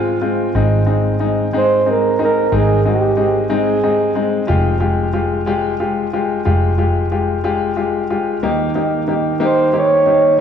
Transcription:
Already playing: G#1 G#3 C4 F4
0.21 G#3 C4 F4
0.55 G#1 G#3 C4 D#4
0.86 G#3 C4 D#4
1.19 G#3 C4 D#4
1.53 G#3 C4 D#4
1.58 C5
1.86 G#3 C4 D#4
1.90 A#4
2.19 G#3 C4 D#4
2.24 A#4
2.52 G#1 G#3 C4 D#4 G#4
2.85 G#3 C4 D#4 G4
3.17 G#3 C4 D#4
3.49 G#3 C4 D#4
3.54 G#4
3.83 G#3 C4 D#4
4.15 G#3 C4 D#4
4.47 F1 G#3 F4 G4
4.80 G#3 F4 G4
5.13 G#3 F4 G4
5.46 G#3 F4 G4
5.80 G#3 F4 G4
6.13 G#3 F4 G4
6.45 F1 G#3 F4 G4
6.78 G#3 F4 G4
7.11 G#3 F4 G4
7.44 G#3 F4 G4
7.76 G#3 F4 G4
8.10 G#3 F4 G4
8.43 D#2 D#3 A#3 D#4 G4
8.75 A#3 D#4 G4
9.08 A#3 D#4 G4
9.40 A#3 D#4 G4
9.45 C5
9.73 A#3 D#4 G4
9.78 C#5
10.06 A#3 D#4 G4

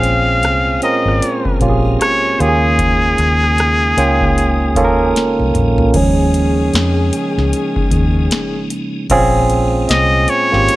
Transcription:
Already playing: A#1 A#2 G#3 A#3 C4 C#4 F4 G#4 F5
0.03 closed hi-hat
0.43 C2, cross-stick, closed hi-hat
0.82 C4 C#4 F4 A#4 D#5, closed hi-hat
1.05 G#1, cross-stick
1.22 closed hi-hat
1.45 kick
1.60 A#1 A#3 C#4 F4 G4, kick, closed hi-hat
1.69 G#4
2.01 C#5, cross-stick, closed hi-hat
2.38 D#2 C#3 G#3 A#3 C#4 D#4 F4 G4 G#4, closed hi-hat
2.48 G#4
2.79 kick, closed hi-hat
3.18 D#2, cross-stick, closed hi-hat
3.44 cross-stick
3.58 cross-stick, closed hi-hat
3.97 C#2 A#3 C#4 F4 G5, closed hi-hat
4.21 kick, cross-stick
4.38 closed hi-hat
4.75 D#2 A#3 C#4 F4 A4, kick, closed hi-hat
4.84 A#4
5.16 snare, closed hi-hat
5.39 C2, high tom
5.54 A#1, closed hi-hat, mid tom
5.78 floor tom
5.94 D#2 C#3 D#3 F3 G#3 A#3 C#4 D#4 G#4, kick, closed hi-hat, crash
6.34 closed hi-hat
6.74 F2, snare, closed hi-hat
7.13 closed hi-hat
7.38 C#2, snare
7.53 closed hi-hat
7.76 kick
7.91 D#2, kick, closed hi-hat
8.31 snare, closed hi-hat
8.70 closed hi-hat
9.10 A#1 A#2 G#3 A#3 C4 C#4 F4 G#4, kick, closed hi-hat, crash
9.50 closed hi-hat
9.89 C2 D#5, snare, closed hi-hat
10.28 C#5, closed hi-hat
10.52 G#1 A#3 C#4 F4 G4, snare
10.69 closed hi-hat

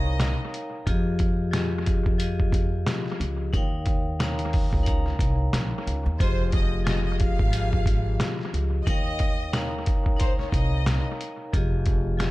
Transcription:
Already playing: C2 D#4 A#4 C#5 D#5 F5 G5 A#5
0.20 snare, closed hi-hat
0.54 closed hi-hat
0.86 F2 F3 F4 G4 G#4 D#5, kick, closed hi-hat
1.19 kick, closed hi-hat
1.51 F3 F4 G4 G#4 D#5, snare, closed hi-hat
1.86 kick, closed hi-hat
2.06 F2, kick
2.18 F3 F4 G4 G#4 D#5, closed hi-hat
2.40 kick
2.52 F2, kick, closed hi-hat
2.87 snare, closed hi-hat
3.06 snare
3.20 C#2, closed hi-hat
3.53 D#2 D#4 A#4 C#5 F5 G5, kick, closed hi-hat
3.86 kick, closed hi-hat
4.19 D#4 A#4 C#5 F5 A#5, snare, closed hi-hat
4.39 closed hi-hat
4.53 kick, open hi-hat
4.73 C#2, kick
4.83 D#4 A#4 C#5 F5 A#5, closed hi-hat
4.88 kick
5.06 snare
5.19 C2, kick, closed hi-hat
5.53 A#1, snare, closed hi-hat
5.87 C#2, closed hi-hat
6.06 D#2
6.19 F1 F3 F4 G4 G#4 C5 D#5, kick, closed hi-hat
6.52 D#5, kick, closed hi-hat
6.84 F3 F4 G4 G#4 D#5, snare, closed hi-hat
7.06 D#5
7.20 F5, kick, closed hi-hat
7.39 G#1, kick
7.51 F3 F4 G4 G#4 D#5, closed hi-hat
7.73 kick
7.86 G#1, kick, closed hi-hat
8.20 snare, closed hi-hat
8.39 snare
8.54 C#2, closed hi-hat
8.85 D#2 D#4 A#4 C#5 D#5 F5, kick, closed hi-hat
8.90 G5
9.19 kick, closed hi-hat
9.53 D#4 A#4 C#5 F5 A#5, snare, closed hi-hat
9.86 kick, closed hi-hat
10.06 C#2, kick
10.16 D#4 A#4 C5 C#5 F5 A#5, closed hi-hat
10.21 kick
10.39 C#5, snare
10.52 C2 D#5, kick, closed hi-hat
10.86 snare, closed hi-hat
11.21 closed hi-hat
11.52 F1 F3 F4 G4 G#4 D#5, kick, closed hi-hat
11.86 kick, closed hi-hat
12.17 F3 F4 G4 G#4 D#5, snare, closed hi-hat

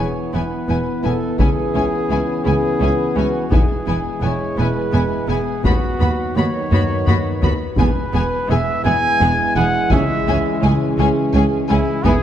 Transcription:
Already playing: E3 B3 B4 C#5
0.33 E1 E2 B3 E4 B4 G#5
0.68 E1 E2 B3 E4 G#5
1.03 E1 E2 B3 E4 A4 G#5
1.38 C#2 C#4 E4 G#4 G#5, taiko
1.74 C#2 C#4 E4 G#5
2.10 C#2 C#4 E4 G#5
2.45 C#2 C#4 E4 G#4 G#5
2.80 C#2 C#4 E4 G#5
3.16 C#2 C#4 E4 F#4 G#5
3.51 E1 E2 E3 G#3 B3 E4 G#4 G#5, taiko
3.87 E1 E2 B3 E4 G#5
4.21 E1 E2 B3 E4 C#5 G#5
4.57 E1 E2 B3 E4 B4 G#5
4.93 E1 E2 B3 E4 G#5
5.28 E1 E2 B3 E4 G#4 G#5
5.64 D#2 D#3 F#3 B3 F#4 B4 B5, taiko
6.00 D#2 B3 F#4 B5
6.35 D#2 B3 F#4 C#5 B5
6.71 D#2 B3 F#4 B5, taiko low-mid
7.07 D#2 B3 F#4 B5, taiko low-mid
7.42 D#2 B3 F#4 B5, taiko low
7.78 E1 E2 E3 G#3 B3 G#4 B4 G#5, taiko
8.14 E1 E2 B3 G#4 G#5
8.49 E1 E2 B3 G#4 E5 G#5
8.85 E1 E2 B3 G#4 G#5
9.20 E1 E2 B3 G#4 G#5
9.56 E1 E2 B3 G#4 F#5 G#5
9.90 C#2 C#4 G#4 E5 G#5, taiko
10.28 C#2 C#4 G#4 G#5
10.63 C#2 C#4 G#4 G#5, taiko mid
10.98 C#2 C#4 G#4 G#5
11.34 C#2 C#4 G#4 G#5
11.69 C#2 C#4 E4 G#4 G#5
12.04 E1 E2 E3 G#3 B3 E4 G#4 B4 G#5, taiko

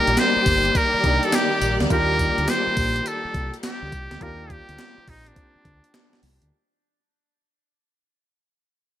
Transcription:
Already playing: D#3 G3 A#3 D4 D#4 G4 A#4 D5
0.07 A#1, closed hi-hat
0.17 C5, snare, clap, closed hi-hat, tambourine
0.36 muted fingered electric bass stroke
0.46 G1, kick, open hi-hat, tambourine
0.65 closed hi-hat
0.75 A#4, kick, closed hi-hat, tambourine
0.94 muted fingered electric bass stroke
1.04 C2 A#3 D4 D#4 G4, kick, closed hi-hat
1.23 A4, closed hi-hat
1.32 G4, snare, clap, closed hi-hat, tambourine
1.61 A#1, closed hi-hat, tambourine
1.80 D2, snare, closed hi-hat
1.90 D#2 A#3 D4 F4 G4 A#4, kick, closed hi-hat, tambourine
2.19 kick, closed hi-hat, tambourine
2.38 D2, closed hi-hat
2.48 C5, snare, clap, closed hi-hat, tambourine
2.67 muted fingered electric bass stroke
2.77 A#1, kick, open hi-hat, tambourine
2.96 closed hi-hat
3.06 A4, closed hi-hat, tambourine
3.25 muted fingered electric bass stroke
3.34 C2, kick, closed hi-hat
3.54 closed hi-hat
3.63 G4, snare, clap, closed hi-hat, tambourine
3.82 D2
3.92 C2, kick, closed hi-hat, tambourine
4.11 D2, snare, closed hi-hat
4.21 D#2 A#3 C4 D4 F4 G4 A#4, kick, closed hi-hat
4.50 G4, kick, closed hi-hat
4.69 D2, closed hi-hat
4.79 snare, clap, closed hi-hat
4.98 muted fingered electric bass stroke
5.08 A#1 D#4, kick, open hi-hat
5.26 D4, closed hi-hat
5.36 kick, closed hi-hat
5.56 muted fingered electric bass stroke
5.65 D2, kick, closed hi-hat
5.84 closed hi-hat
5.94 snare, clap, closed hi-hat
6.13 snare
6.23 C2, open hi-hat
6.42 D2, closed hi-hat

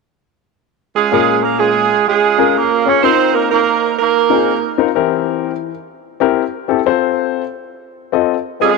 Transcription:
0.95 G#3 C#4 F4 G#4
1.12 A#2 G#3 C#4 F4 G#4 A#4
1.43 A#3 A#4
1.59 G#3 C#4 F4 G#4
2.08 G#3 C#4 F4 G#4
2.38 C#4 F4 G#4 A#4
2.56 A#3 A#4
2.86 C#4 F4 G#4 C#5
3.03 C4 D#4 F4 A#4 C5
3.34 A#3 A#4
3.51 A#3 D#4 A#4
3.99 A#3 D#4 A#4
4.30 C4 D#4 F4 G#4
4.78 C4 D#4 F4 A#4
4.95 E3 C4 E4 G4 A#4
6.20 C4 E4 G4 A#4
6.68 C4 E4 G4 A4
6.86 C4 F4 A4 C5
8.12 C4 F4 A4 D#5
8.60 G#3 C4 C#4 F4 G#4 A4 D#5

